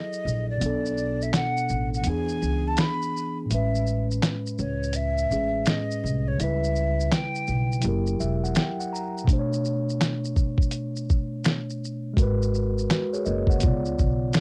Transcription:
0.00 0.55 F#3 medium
0.00 0.56 E4 medium
0.00 0.58 G#4 medium
0.00 0.59 A4 medium
0.00 0.49 D#5 medium
0.13 shaker soft
0.25 0.58 A#1 medium
0.25 shaker soft
0.50 1.24 D5 medium
0.57 2.00 B2 medium
0.57 2.02 B3 medium
0.61 1.29 B1 loud
0.61 2.04 D4 medium
0.61 closed hi-hat medium
0.61 shaker medium
0.66 2.05 A4 medium
0.85 shaker soft
0.97 shaker soft
1.22 1.34 E5 medium
1.22 shaker soft
1.33 1.89 F#5 loud
1.33 finger snap medium
1.33 snare loud
1.33 closed hi-hat medium
1.33 shaker medium
1.57 shaker soft
1.69 2.03 A1 medium
1.69 shaker soft
1.94 2.09 F#5 loud
1.94 shaker soft
2.01 3.45 E3 medium
2.01 3.46 B3 medium
2.01 closed hi-hat medium
2.01 shaker medium
2.06 2.39 E2 loud
2.06 3.48 D4 medium
2.06 3.49 G#4 medium
2.06 2.69 G#5 loud
2.29 shaker soft
2.42 2.75 C#2 medium
2.42 shaker soft
2.68 2.81 A5 loud
2.77 3.38 B5 loud
2.77 finger snap medium
2.77 snare loud
2.77 closed hi-hat medium
2.77 shaker medium
3.02 shaker soft
3.17 shaker soft
3.46 5.25 A2 medium
3.46 5.26 G#3 medium
3.51 4.18 A1 loud
3.51 5.28 C#4 medium
3.51 5.29 B4 medium
3.51 4.06 E5 medium
3.51 closed hi-hat medium
3.51 shaker medium
3.75 shaker soft
3.87 shaker soft
4.11 shaker soft
4.22 finger snap medium
4.22 snare loud
4.22 closed hi-hat medium
4.22 shaker medium
4.46 shaker medium
4.58 5.27 C#2 medium
4.58 4.97 C#5 medium
4.58 shaker soft
4.83 shaker soft
4.93 5.70 E5 loud
4.93 closed hi-hat medium
4.93 shaker medium
5.18 shaker soft
5.29 5.64 A1 medium
5.29 6.38 A2 medium
5.29 6.39 G#3 soft
5.29 6.39 C#4 soft
5.29 6.40 G#4 medium
5.29 shaker medium
5.66 6.29 D#5 medium
5.66 finger snap medium
5.66 snare loud
5.66 closed hi-hat medium
5.66 shaker medium
5.91 shaker soft
6.04 6.37 C2 medium
6.04 shaker medium
6.28 6.42 C#5 medium
6.36 7.79 C#3 medium
6.36 7.80 G3 medium
6.40 7.08 C#2 medium
6.40 7.81 E4 medium
6.40 7.14 E5 loud
6.40 closed hi-hat medium
6.40 shaker medium
6.44 7.83 B4 medium
6.64 shaker soft
6.76 shaker soft
7.00 shaker soft
7.12 7.84 G5 loud
7.12 finger snap medium
7.12 snare loud
7.12 closed hi-hat medium
7.12 shaker medium
7.35 shaker soft
7.47 7.81 B1 medium
7.47 shaker soft
7.72 shaker soft
7.80 9.23 F#3 medium
7.80 9.25 E4 medium
7.80 closed hi-hat medium
7.80 shaker medium
7.84 8.17 F#1 loud
7.84 9.26 G4 medium
7.88 9.27 A#4 medium
8.07 shaker soft
8.20 8.54 E1 medium
8.20 8.42 E5 medium
8.20 shaker medium
8.44 8.55 F#5 medium
8.44 shaker medium
8.55 8.78 G5 medium
8.55 finger snap medium
8.55 snare loud
8.55 closed hi-hat medium
8.55 shaker medium
8.80 8.91 F#5 medium
8.80 shaker soft
8.93 9.26 A#5 medium
8.93 shaker medium
9.18 shaker soft
9.24 12.11 B2 medium
9.24 12.13 A3 medium
9.24 kick loud
9.29 12.14 D4 medium
9.29 closed hi-hat medium
9.29 shaker medium
9.33 9.39 C5 medium
9.39 12.19 C#5 medium
9.53 shaker soft
9.65 shaker soft
9.89 shaker soft
10.01 finger snap medium
10.01 snare loud
10.01 closed hi-hat medium
10.01 shaker medium
10.24 shaker soft
10.36 kick medium
10.36 shaker soft
10.58 kick medium
10.58 shaker soft
10.71 closed hi-hat medium
10.71 shaker medium
10.96 shaker soft
11.10 kick medium
11.10 shaker medium
11.44 finger snap medium
11.44 snare loud
11.44 closed hi-hat medium
11.44 shaker medium
11.70 shaker soft
11.84 shaker soft
12.14 12.85 G#1 medium
12.14 13.57 G#3 medium
12.14 12.88 F#4 medium
12.14 kick loud
12.18 12.89 A#4 medium
12.18 12.89 B4 medium
12.18 closed hi-hat medium
12.18 shaker medium
12.42 shaker medium
12.54 shaker soft
12.78 shaker soft
12.90 13.12 F#4 medium
12.90 13.12 B4 medium
12.90 finger snap medium
12.90 snare loud
12.90 closed hi-hat medium
12.90 shaker medium
13.13 13.25 G#4 medium
13.13 13.25 C#5 medium
13.13 shaker soft
13.25 13.65 F#1 medium
13.25 13.48 A#4 medium
13.25 13.48 D#5 medium
13.25 shaker soft
13.47 13.84 C#5 medium
13.47 13.84 F#5 medium
13.47 kick medium
13.47 shaker soft
13.58 14.40 C#3 medium
13.58 14.40 B3 medium
13.58 closed hi-hat medium
13.58 shaker medium
13.63 13.96 C#2 medium
13.63 14.40 F4 medium
13.63 14.40 D5 medium
13.63 kick loud
13.85 shaker soft
13.99 14.32 B1 medium
13.99 kick medium
13.99 shaker medium
14.33 finger snap medium
14.33 snare loud
14.33 closed hi-hat medium
14.33 shaker medium

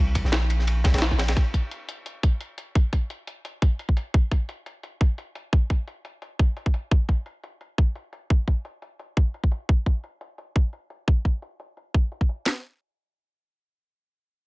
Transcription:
0.00 0.23 C2 loud
0.15 kick medium
0.15 closed hi-hat medium
0.15 ride medium
0.24 0.84 A#1 loud
0.24 snare soft
0.32 snare loud
0.32 closed hi-hat medium
0.32 ride medium
0.50 closed hi-hat medium
0.50 ride medium
0.59 snare soft
0.67 closed hi-hat medium
0.67 ride medium
0.84 0.93 C2 loud
0.84 kick loud
0.84 snare medium
0.84 closed hi-hat medium
0.84 ride medium
0.94 1.35 A#1 medium
0.94 snare medium
0.94 ride medium
0.98 snare medium
0.98 ride medium
1.02 snare loud
1.02 closed hi-hat medium
1.11 kick medium
1.11 snare soft
1.18 snare loud
1.18 closed hi-hat medium
1.18 ride medium
1.28 snare loud
1.28 ride medium
1.37 kick loud
1.37 closed hi-hat medium
1.54 kick medium
1.54 closed hi-hat medium
1.71 closed hi-hat medium
1.89 closed hi-hat medium
2.06 closed hi-hat medium
2.23 kick loud
2.23 closed hi-hat loud
2.41 closed hi-hat medium
2.58 closed hi-hat medium
2.75 kick loud
2.75 closed hi-hat medium
2.93 kick medium
2.93 closed hi-hat loud
3.10 closed hi-hat medium
3.27 closed hi-hat medium
3.45 closed hi-hat medium
3.62 kick loud
3.62 closed hi-hat medium
3.79 closed hi-hat medium
3.89 kick medium
3.97 closed hi-hat loud
4.14 kick loud
4.14 closed hi-hat medium
4.31 kick medium
4.31 closed hi-hat loud
4.49 closed hi-hat medium
4.66 closed hi-hat medium
4.83 closed hi-hat medium
5.01 kick loud
5.01 closed hi-hat medium
5.18 closed hi-hat medium
5.35 closed hi-hat loud
5.53 kick loud
5.53 closed hi-hat medium
5.70 kick medium
5.70 closed hi-hat medium
5.88 closed hi-hat medium
6.05 closed hi-hat medium
6.22 closed hi-hat medium
6.39 kick loud
6.39 closed hi-hat medium
6.57 closed hi-hat medium
6.66 kick medium
6.74 closed hi-hat medium
6.91 kick loud
6.91 closed hi-hat medium
7.09 kick medium
7.09 closed hi-hat medium
7.26 closed hi-hat medium
7.43 closed hi-hat medium
7.61 closed hi-hat medium
7.78 kick loud
7.78 closed hi-hat medium
7.95 closed hi-hat medium
8.13 closed hi-hat medium
8.30 kick loud
8.30 closed hi-hat medium
8.47 kick medium
8.47 closed hi-hat medium
8.65 closed hi-hat medium
8.82 closed hi-hat medium
8.99 closed hi-hat medium
9.17 kick loud
9.17 closed hi-hat medium
9.34 closed hi-hat medium
9.44 kick medium
9.52 closed hi-hat medium
9.69 kick loud
9.69 closed hi-hat medium
9.86 kick medium
9.86 closed hi-hat medium
10.04 closed hi-hat medium
10.21 closed hi-hat medium
10.38 closed hi-hat medium
10.55 kick medium
10.55 closed hi-hat medium
10.73 closed hi-hat medium
10.90 closed hi-hat medium
11.07 kick loud
11.07 closed hi-hat medium
11.25 kick medium
11.25 closed hi-hat medium
11.42 closed hi-hat medium
11.60 closed hi-hat medium
11.77 closed hi-hat medium
11.94 kick medium
11.94 closed hi-hat medium
12.12 closed hi-hat medium
12.21 kick medium
12.29 closed hi-hat medium
12.46 snare loud

